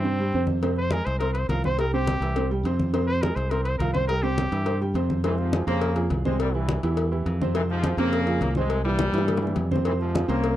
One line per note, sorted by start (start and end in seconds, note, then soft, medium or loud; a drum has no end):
0.00 0.30 G2 loud
0.00 0.16 C3 medium
0.00 0.46 C4 loud
0.05 0.17 C4 medium
0.05 0.17 C5 medium
0.05 high conga soft
0.18 0.32 G3 medium
0.18 0.32 G4 medium
0.18 0.32 G5 medium
0.18 high conga soft
0.32 1.01 F2 loud
0.32 0.58 C3 medium
0.32 0.58 C4 medium
0.32 0.58 C5 medium
0.32 high conga soft
0.47 high conga medium
0.62 0.86 C3 medium
0.62 0.86 C4 medium
0.62 0.86 C5 medium
0.62 cowbell loud
0.62 high conga soft
0.76 0.94 C5 loud
0.76 high conga soft
0.91 1.16 G#3 medium
0.91 1.15 G#4 medium
0.91 1.07 A#4 loud
0.91 1.16 G#5 medium
0.91 cowbell medium
0.91 high conga loud
1.05 1.46 C2 loud
1.05 1.19 C5 medium
1.05 cowbell medium
1.05 high conga soft
1.19 1.45 C4 medium
1.19 1.33 A#4 loud
1.19 1.45 C5 medium
1.19 1.45 C6 medium
1.19 cowbell loud
1.19 high conga soft
1.33 1.48 C5 medium
1.33 cowbell medium
1.33 high conga soft
1.49 2.16 C2 loud
1.49 1.62 F3 medium
1.49 1.62 F4 medium
1.49 1.63 A#4 medium
1.49 1.62 F5 medium
1.49 cowbell medium
1.49 high conga medium
1.64 1.76 C4 medium
1.64 1.76 C5 medium
1.64 1.78 C5 loud
1.64 1.76 C6 medium
1.64 high conga medium
1.78 1.90 G3 medium
1.78 1.91 G4 medium
1.78 1.93 A#4 medium
1.78 1.91 G5 medium
1.78 cowbell loud
1.78 high conga soft
1.93 2.17 C3 medium
1.93 2.17 C4 medium
1.93 2.49 G4 loud
1.93 2.17 C5 medium
1.93 high conga soft
2.07 cowbell medium
2.07 high conga loud
2.20 2.61 C2 loud
2.20 2.34 E3 medium
2.20 2.34 E4 medium
2.20 2.34 E5 medium
2.20 cowbell medium
2.20 high conga soft
2.36 2.48 C3 medium
2.36 2.48 C4 medium
2.36 2.48 C5 medium
2.36 cowbell loud
2.36 high conga soft
2.51 2.62 G3 medium
2.51 2.62 G4 medium
2.51 2.63 G5 medium
2.51 high conga soft
2.63 3.31 F2 loud
2.63 2.89 C3 medium
2.63 2.89 C4 medium
2.63 2.89 C5 medium
2.63 cowbell medium
2.63 high conga soft
2.80 high conga loud
2.93 3.17 C3 medium
2.93 3.18 C4 medium
2.93 3.18 C5 medium
2.93 cowbell loud
3.07 3.24 C5 loud
3.07 high conga soft
3.22 3.46 G#3 medium
3.22 3.46 G#4 medium
3.22 3.37 A#4 loud
3.22 3.46 G#5 medium
3.22 cowbell medium
3.22 high conga loud
3.36 3.77 C2 loud
3.36 3.52 C5 medium
3.36 cowbell medium
3.36 high conga soft
3.51 3.75 C4 medium
3.51 3.63 A#4 loud
3.51 3.75 C5 medium
3.51 3.75 C6 medium
3.51 cowbell loud
3.51 high conga soft
3.64 3.78 C5 loud
3.64 cowbell medium
3.64 high conga soft
3.79 4.46 C2 loud
3.79 3.92 F3 medium
3.79 3.92 F4 medium
3.79 3.93 A#4 medium
3.79 3.93 F5 medium
3.79 cowbell medium
3.79 high conga medium
3.93 4.06 C4 medium
3.93 4.07 C5 loud
3.93 4.06 C5 medium
3.93 4.07 C6 medium
3.93 high conga medium
4.08 4.21 G3 medium
4.08 4.21 G4 medium
4.08 4.24 A#4 loud
4.08 4.21 G5 medium
4.08 cowbell loud
4.23 4.47 C3 medium
4.23 4.47 C4 medium
4.23 4.79 G4 loud
4.23 4.47 C5 medium
4.23 high conga soft
4.38 cowbell medium
4.38 high conga loud
4.52 4.92 G2 loud
4.52 4.64 E3 medium
4.52 4.64 E4 medium
4.52 4.64 E5 medium
4.52 cowbell medium
4.52 high conga soft
4.66 4.78 C3 medium
4.66 4.78 C4 medium
4.66 4.78 C5 medium
4.66 cowbell loud
4.66 high conga soft
4.81 4.93 G3 medium
4.81 4.93 G4 medium
4.81 4.93 G5 medium
4.81 high conga soft
4.94 5.61 F2 loud
4.94 5.19 C3 medium
4.94 5.19 C4 medium
4.94 5.19 C5 medium
4.94 cowbell medium
4.94 high conga soft
5.10 high conga medium
5.24 5.38 G#2 medium
5.24 5.48 C3 medium
5.24 5.37 E3 loud
5.24 5.48 C4 medium
5.24 5.48 C5 medium
5.24 cowbell loud
5.24 high conga soft
5.38 5.68 G#2 medium
5.38 5.68 F3 loud
5.38 high conga soft
5.53 5.65 F3 medium
5.53 5.65 F4 medium
5.53 5.65 G#4 medium
5.53 cowbell medium
5.53 high conga loud
5.67 6.07 F2 loud
5.67 5.91 C3 medium
5.67 6.08 C#3 medium
5.67 6.08 A#3 loud
5.67 5.91 C4 loud
5.67 5.91 C5 loud
5.67 cowbell medium
5.67 high conga soft
5.81 cowbell loud
5.81 high conga soft
5.96 6.20 F3 medium
5.96 6.20 F4 medium
5.96 6.20 G#4 medium
5.96 cowbell medium
5.96 high conga soft
6.10 6.77 C2 loud
6.10 cowbell medium
6.10 high conga medium
6.25 6.49 C3 medium
6.25 6.39 C3 medium
6.25 6.39 G#3 loud
6.25 6.49 C4 medium
6.25 6.49 C5 loud
6.25 high conga medium
6.40 6.53 A#2 medium
6.40 6.53 G3 loud
6.40 cowbell loud
6.54 6.84 G2 medium
6.54 6.78 E3 medium
6.54 6.83 E3 loud
6.54 6.78 E4 medium
6.54 6.78 G4 medium
6.54 high conga soft
6.69 cowbell medium
6.69 high conga loud
6.83 7.23 E2 loud
6.83 7.11 G2 medium
6.83 7.07 E3 medium
6.83 7.11 E3 medium
6.83 7.07 E4 medium
6.83 7.07 G4 medium
6.83 cowbell medium
6.83 high conga soft
6.97 cowbell loud
6.97 high conga soft
7.11 7.35 E3 medium
7.11 7.35 E4 medium
7.11 7.35 G4 medium
7.11 high conga soft
7.26 7.92 F2 loud
7.26 cowbell medium
7.26 high conga soft
7.41 7.53 C3 loud
7.41 7.53 C4 loud
7.41 7.53 C5 medium
7.41 high conga loud
7.55 7.62 G#2 medium
7.55 7.79 C3 medium
7.55 7.62 E3 loud
7.55 7.79 C4 medium
7.55 7.79 C5 medium
7.55 cowbell loud
7.55 high conga soft
7.70 7.97 G#2 medium
7.70 7.96 F3 loud
7.70 high conga soft
7.84 7.96 F3 medium
7.84 7.96 F4 medium
7.84 7.96 G#4 medium
7.84 cowbell medium
7.84 high conga loud
7.97 8.38 F2 loud
7.97 8.22 C3 loud
7.97 8.52 C#3 loud
7.97 8.52 A#3 loud
7.97 8.22 C4 loud
7.97 8.22 C5 loud
7.97 cowbell medium
7.97 high conga soft
8.12 cowbell loud
8.12 high conga soft
8.27 8.50 F3 medium
8.27 8.51 F4 medium
8.27 8.51 G#4 medium
8.27 cowbell medium
8.27 high conga soft
8.41 9.08 C2 loud
8.41 cowbell medium
8.41 high conga medium
8.55 8.80 C3 medium
8.55 8.86 C3 medium
8.55 8.85 G#3 loud
8.55 8.80 C4 medium
8.55 8.80 C5 medium
8.55 high conga loud
8.70 cowbell loud
8.70 high conga soft
8.84 9.67 A#2 medium
8.84 9.09 E3 medium
8.84 9.67 G3 loud
8.84 9.09 E4 medium
8.84 9.09 G4 medium
8.84 high conga soft
8.99 cowbell medium
8.99 high bongo loud
8.99 high conga loud
9.13 9.53 G2 medium
9.13 9.37 E3 medium
9.13 9.37 E4 medium
9.13 9.38 G4 medium
9.13 cowbell medium
9.13 high conga soft
9.18 high bongo medium
9.27 cowbell loud
9.27 low bongo medium
9.27 high conga soft
9.37 low bongo loud
9.42 9.66 E3 medium
9.42 9.66 E4 medium
9.42 9.66 G4 medium
9.42 high conga soft
9.47 low bongo medium
9.56 10.23 F2 loud
9.56 cowbell medium
9.56 low bongo medium
9.56 high conga soft
9.71 9.83 C3 medium
9.71 9.83 C4 medium
9.71 9.83 C5 medium
9.71 high conga medium
9.76 low bongo medium
9.85 9.92 G#2 medium
9.85 10.09 C3 medium
9.85 9.93 E3 loud
9.85 10.09 C4 medium
9.85 10.09 C5 medium
9.85 cowbell loud
10.00 10.27 G#2 medium
10.00 10.27 F3 loud
10.00 high conga soft
10.14 10.26 F3 medium
10.14 10.26 F4 medium
10.14 10.26 G#4 medium
10.14 cowbell medium
10.14 high conga loud
10.28 10.57 C2 loud
10.28 10.52 C3 medium
10.28 10.57 A#3 loud
10.28 10.52 C4 medium
10.28 10.57 C#4 medium
10.28 10.52 C5 loud
10.28 cowbell medium
10.28 high conga soft
10.44 cowbell loud